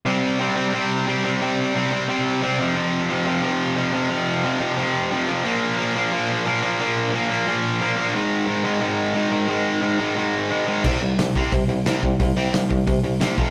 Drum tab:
CC |--------|--------|--------|--------|
HH |--------|--------|--------|--------|
SD |--------|--------|--------|--------|
BD |--------|--------|--------|--------|

CC |--------|--------|--------|--------|
HH |--------|--------|--------|--------|
SD |--------|--------|--------|--------|
BD |--------|--------|--------|--------|

CC |x-------|--------|
HH |--o-o-o-|o-o-o-o-|
SD |--o---o-|--o---o-|
BD |o--oo--o|o--oo--o|